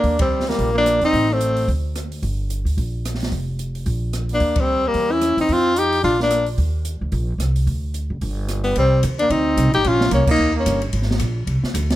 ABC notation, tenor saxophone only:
X:1
M:4/4
L:1/8
Q:"Swing" 1/4=220
K:Eb
V:1 name="Tenor saxophone"
D C2 B,2 D2 E- | E C3 z4 | z8 | z6 z D- |
D C2 B,2 =E2 _E | F2 G2 F D2 z | z8 | z6 z =B, |
[K:Cm] C2 z D E3 G | F2 _D E2 D2 z | z8 |]